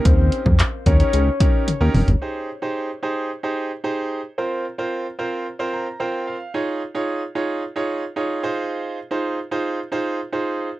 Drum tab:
HH |x-x-x-xxx-x-x-ox|----------------|----------------|----------------|
CP |----x-----------|----------------|----------------|----------------|
T1 |------------o---|----------------|----------------|----------------|
T2 |--------------o-|----------------|----------------|----------------|
FT |---------------o|----------------|----------------|----------------|
BD |o--o--o---o-----|----------------|----------------|----------------|

HH |----------------|
CP |----------------|
T1 |----------------|
T2 |----------------|
FT |----------------|
BD |----------------|